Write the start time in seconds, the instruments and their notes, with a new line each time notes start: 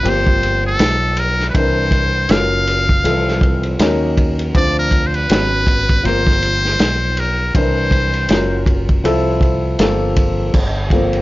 0.03 fretless electric bass G1, grand piano F3 A#3 C4 G4, ride
0.08 muted trumpet C5
0.27 kick
0.43 ride
0.67 muted trumpet A4
0.79 fretless electric bass B1, snare, hi-hat pedal, ride
1.17 muted trumpet A#4, ride
1.40 snare
1.49 muted trumpet B4
1.55 fretless electric bass C2, grand piano E3 C4 D4 A#4, muted trumpet C5, kick, ride
1.91 kick, ride
2.29 fretless electric bass F#1, grand piano F#3 C#4 F4 A4, muted trumpet F5, snare, hi-hat pedal, ride
2.37 grand piano A#4
2.67 ride
2.89 kick
3.04 fretless electric bass C2, grand piano E3 F3 C4 A4, ride
3.28 snare
3.41 kick, ride
3.63 ride
3.79 fretless electric bass D#2, grand piano F#3 C#4 D#4 A#4, snare, hi-hat pedal, ride
4.17 kick, ride
4.39 ride
4.55 fretless electric bass D2, grand piano F3 C4 D4 C5, muted trumpet D5, kick, ride
4.79 muted trumpet A#4
4.91 kick, ride
5.06 muted trumpet C5
5.14 muted trumpet B4, ride
5.29 fretless electric bass G#1, grand piano F#3 B3 C#4 B4, snare, hi-hat pedal, ride
5.67 kick, ride
5.89 kick, ride
6.03 fretless electric bass G1, grand piano F3 A#3 C4 A#4, muted trumpet C5, ride
6.27 kick, snare
6.42 ride
6.65 snare
6.79 fretless electric bass B1, snare, hi-hat pedal, ride
7.17 muted trumpet A#4, ride
7.55 fretless electric bass C2, grand piano E3 C4 D4 A#4, muted trumpet C5, kick, ride
7.91 kick, ride
8.13 ride
8.29 fretless electric bass F#1, grand piano F#3 C#4 F4 A#4, snare, hi-hat pedal, ride
8.66 kick, ride
8.89 kick, ride
9.04 fretless electric bass C2, grand piano F3 C4 E4 A4, ride
9.41 kick, ride
9.79 fretless electric bass G1, grand piano F3 A#3 C4 A4, snare, hi-hat pedal, ride
10.16 kick, ride
10.54 fretless electric bass G1, kick, crash
10.90 grand piano F3 A#3 C4 A4, kick, ride
11.13 ride